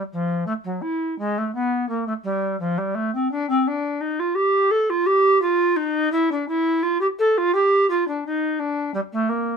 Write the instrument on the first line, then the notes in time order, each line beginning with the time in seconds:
recorder
0.13 F3
0.47 A3
0.64 F#3
0.82 E4
1.19 G#3
1.38 A3
1.55 B3
1.89 A#3
2.07 A3
2.24 G3
2.60 F3
2.78 G3
2.95 A3
3.15 C4
3.31 D4
3.49 C4
3.67 D4
4.01 D#4
4.19 F4
4.35 G4
4.71 A4
4.90 F4
5.06 G4
5.42 F4
5.76 D#4
6.12 E4
6.32 D4
6.48 E4
6.83 F4
7.01 G4
7.19 A4
7.38 F4
7.55 G4
7.90 F4
8.08 D4
8.26 D#4
8.59 D4
8.94 G3
9.13 A3
9.29 A#3